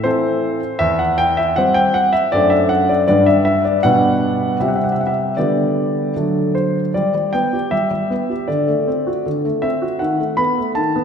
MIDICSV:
0, 0, Header, 1, 2, 480
1, 0, Start_track
1, 0, Key_signature, 1, "major"
1, 0, Tempo, 756620
1, 508, Time_signature, 2, 2, 24, 8
1, 2430, Tempo, 780234
1, 4830, Tempo, 758534
1, 6925, End_track
2, 0, Start_track
2, 0, Title_t, "Grand piano"
2, 0, Program_c, 0, 0
2, 23, Note_on_c, 0, 72, 70
2, 30, Note_on_c, 0, 52, 41
2, 32, Note_on_c, 0, 60, 43
2, 38, Note_on_c, 0, 69, 42
2, 374, Note_off_c, 0, 52, 0
2, 375, Note_off_c, 0, 60, 0
2, 379, Note_off_c, 0, 69, 0
2, 500, Note_on_c, 0, 76, 80
2, 504, Note_off_c, 0, 72, 0
2, 508, Note_on_c, 0, 40, 56
2, 624, Note_off_c, 0, 76, 0
2, 627, Note_on_c, 0, 78, 68
2, 747, Note_on_c, 0, 79, 82
2, 748, Note_off_c, 0, 78, 0
2, 868, Note_off_c, 0, 79, 0
2, 870, Note_on_c, 0, 76, 69
2, 974, Note_off_c, 0, 40, 0
2, 990, Note_off_c, 0, 76, 0
2, 990, Note_on_c, 0, 78, 79
2, 1000, Note_on_c, 0, 55, 41
2, 1000, Note_on_c, 0, 60, 40
2, 1003, Note_on_c, 0, 72, 44
2, 1106, Note_on_c, 0, 79, 76
2, 1110, Note_off_c, 0, 78, 0
2, 1228, Note_off_c, 0, 79, 0
2, 1231, Note_on_c, 0, 78, 77
2, 1343, Note_off_c, 0, 55, 0
2, 1343, Note_off_c, 0, 60, 0
2, 1345, Note_off_c, 0, 72, 0
2, 1349, Note_on_c, 0, 76, 68
2, 1351, Note_off_c, 0, 78, 0
2, 1470, Note_off_c, 0, 76, 0
2, 1472, Note_on_c, 0, 74, 80
2, 1479, Note_on_c, 0, 42, 49
2, 1479, Note_on_c, 0, 57, 39
2, 1484, Note_on_c, 0, 62, 37
2, 1488, Note_on_c, 0, 72, 38
2, 1586, Note_on_c, 0, 76, 64
2, 1591, Note_off_c, 0, 74, 0
2, 1707, Note_on_c, 0, 78, 73
2, 1708, Note_off_c, 0, 76, 0
2, 1828, Note_off_c, 0, 78, 0
2, 1835, Note_on_c, 0, 74, 59
2, 1928, Note_off_c, 0, 57, 0
2, 1930, Note_off_c, 0, 62, 0
2, 1933, Note_off_c, 0, 72, 0
2, 1939, Note_off_c, 0, 42, 0
2, 1942, Note_off_c, 0, 74, 0
2, 1952, Note_on_c, 0, 74, 69
2, 1958, Note_on_c, 0, 55, 34
2, 1959, Note_on_c, 0, 43, 49
2, 1963, Note_on_c, 0, 62, 35
2, 1967, Note_on_c, 0, 71, 38
2, 2070, Note_off_c, 0, 74, 0
2, 2071, Note_on_c, 0, 76, 63
2, 2179, Note_off_c, 0, 76, 0
2, 2188, Note_on_c, 0, 76, 65
2, 2308, Note_off_c, 0, 76, 0
2, 2315, Note_on_c, 0, 74, 50
2, 2408, Note_off_c, 0, 55, 0
2, 2410, Note_off_c, 0, 62, 0
2, 2413, Note_off_c, 0, 71, 0
2, 2420, Note_off_c, 0, 43, 0
2, 2430, Note_on_c, 0, 78, 81
2, 2432, Note_off_c, 0, 74, 0
2, 2439, Note_on_c, 0, 47, 50
2, 2439, Note_on_c, 0, 55, 37
2, 2440, Note_on_c, 0, 62, 36
2, 2445, Note_on_c, 0, 71, 36
2, 2876, Note_off_c, 0, 78, 0
2, 2880, Note_off_c, 0, 55, 0
2, 2881, Note_off_c, 0, 62, 0
2, 2884, Note_off_c, 0, 71, 0
2, 2891, Note_off_c, 0, 47, 0
2, 2904, Note_on_c, 0, 48, 48
2, 2904, Note_on_c, 0, 55, 32
2, 2906, Note_on_c, 0, 76, 47
2, 2910, Note_on_c, 0, 60, 32
2, 2912, Note_on_c, 0, 67, 31
2, 2953, Note_off_c, 0, 76, 0
2, 2955, Note_on_c, 0, 78, 48
2, 3001, Note_on_c, 0, 76, 45
2, 3002, Note_off_c, 0, 78, 0
2, 3050, Note_off_c, 0, 76, 0
2, 3050, Note_on_c, 0, 78, 46
2, 3100, Note_off_c, 0, 78, 0
2, 3100, Note_on_c, 0, 76, 44
2, 3150, Note_off_c, 0, 76, 0
2, 3155, Note_on_c, 0, 78, 46
2, 3191, Note_on_c, 0, 76, 52
2, 3203, Note_off_c, 0, 78, 0
2, 3358, Note_off_c, 0, 55, 0
2, 3361, Note_off_c, 0, 60, 0
2, 3362, Note_off_c, 0, 67, 0
2, 3369, Note_off_c, 0, 48, 0
2, 3376, Note_off_c, 0, 76, 0
2, 3376, Note_on_c, 0, 74, 54
2, 3380, Note_on_c, 0, 50, 41
2, 3383, Note_on_c, 0, 55, 31
2, 3387, Note_on_c, 0, 59, 28
2, 3392, Note_on_c, 0, 67, 32
2, 3843, Note_off_c, 0, 55, 0
2, 3845, Note_off_c, 0, 59, 0
2, 3848, Note_off_c, 0, 67, 0
2, 3852, Note_off_c, 0, 50, 0
2, 3865, Note_on_c, 0, 54, 28
2, 3866, Note_on_c, 0, 50, 38
2, 3870, Note_on_c, 0, 57, 28
2, 3876, Note_on_c, 0, 69, 30
2, 4084, Note_off_c, 0, 74, 0
2, 4101, Note_on_c, 0, 72, 48
2, 4250, Note_off_c, 0, 72, 0
2, 4327, Note_off_c, 0, 54, 0
2, 4330, Note_off_c, 0, 57, 0
2, 4333, Note_off_c, 0, 69, 0
2, 4338, Note_off_c, 0, 50, 0
2, 4345, Note_on_c, 0, 74, 52
2, 4351, Note_on_c, 0, 55, 40
2, 4460, Note_off_c, 0, 55, 0
2, 4469, Note_on_c, 0, 55, 30
2, 4563, Note_off_c, 0, 74, 0
2, 4581, Note_on_c, 0, 79, 65
2, 4589, Note_on_c, 0, 59, 34
2, 4596, Note_off_c, 0, 55, 0
2, 4706, Note_on_c, 0, 67, 32
2, 4714, Note_off_c, 0, 59, 0
2, 4817, Note_on_c, 0, 76, 66
2, 4822, Note_off_c, 0, 79, 0
2, 4822, Note_on_c, 0, 55, 39
2, 4832, Note_off_c, 0, 67, 0
2, 4932, Note_off_c, 0, 55, 0
2, 4942, Note_on_c, 0, 55, 33
2, 5065, Note_on_c, 0, 59, 36
2, 5072, Note_off_c, 0, 55, 0
2, 5188, Note_on_c, 0, 67, 35
2, 5194, Note_off_c, 0, 59, 0
2, 5301, Note_on_c, 0, 74, 48
2, 5304, Note_off_c, 0, 76, 0
2, 5305, Note_on_c, 0, 50, 42
2, 5309, Note_off_c, 0, 67, 0
2, 5424, Note_off_c, 0, 50, 0
2, 5426, Note_on_c, 0, 57, 36
2, 5552, Note_on_c, 0, 60, 35
2, 5555, Note_off_c, 0, 57, 0
2, 5675, Note_on_c, 0, 66, 35
2, 5678, Note_off_c, 0, 60, 0
2, 5788, Note_off_c, 0, 74, 0
2, 5797, Note_on_c, 0, 50, 40
2, 5800, Note_off_c, 0, 66, 0
2, 5912, Note_off_c, 0, 50, 0
2, 5916, Note_on_c, 0, 57, 38
2, 6025, Note_on_c, 0, 76, 61
2, 6030, Note_on_c, 0, 60, 37
2, 6041, Note_off_c, 0, 57, 0
2, 6149, Note_on_c, 0, 66, 36
2, 6157, Note_off_c, 0, 60, 0
2, 6261, Note_on_c, 0, 78, 55
2, 6268, Note_off_c, 0, 76, 0
2, 6270, Note_off_c, 0, 66, 0
2, 6271, Note_on_c, 0, 51, 45
2, 6387, Note_off_c, 0, 51, 0
2, 6388, Note_on_c, 0, 57, 36
2, 6480, Note_off_c, 0, 78, 0
2, 6499, Note_on_c, 0, 83, 72
2, 6506, Note_on_c, 0, 59, 38
2, 6515, Note_off_c, 0, 57, 0
2, 6632, Note_on_c, 0, 57, 38
2, 6634, Note_off_c, 0, 59, 0
2, 6719, Note_off_c, 0, 83, 0
2, 6740, Note_on_c, 0, 81, 69
2, 6748, Note_on_c, 0, 51, 44
2, 6756, Note_off_c, 0, 57, 0
2, 6865, Note_off_c, 0, 51, 0
2, 6871, Note_on_c, 0, 59, 39
2, 6925, Note_off_c, 0, 59, 0
2, 6925, Note_off_c, 0, 81, 0
2, 6925, End_track
0, 0, End_of_file